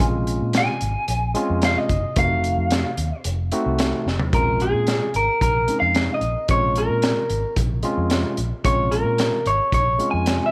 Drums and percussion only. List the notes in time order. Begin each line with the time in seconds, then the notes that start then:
0.00 kick, closed hi-hat
0.27 closed hi-hat
0.53 snare, closed hi-hat
0.81 closed hi-hat
1.08 closed hi-hat
1.35 closed hi-hat
1.62 snare, closed hi-hat
1.89 kick, closed hi-hat
2.16 kick, closed hi-hat
2.44 closed hi-hat
2.71 snare, closed hi-hat
2.97 closed hi-hat
3.24 closed hi-hat
3.52 closed hi-hat
3.79 snare, closed hi-hat
4.08 snare
4.20 floor tom
4.33 kick, closed hi-hat
4.60 closed hi-hat
4.87 snare, closed hi-hat
5.14 closed hi-hat
5.41 kick, closed hi-hat
5.68 closed hi-hat
5.95 snare, closed hi-hat
6.21 closed hi-hat
6.48 kick, closed hi-hat
6.76 closed hi-hat
7.02 snare, closed hi-hat
7.30 closed hi-hat
7.56 kick, closed hi-hat
7.83 closed hi-hat
8.10 snare, closed hi-hat
8.37 closed hi-hat
8.65 kick, closed hi-hat
8.92 closed hi-hat
9.18 snare, closed hi-hat
9.46 closed hi-hat
9.72 kick, closed hi-hat
9.99 closed hi-hat
10.26 snare, closed hi-hat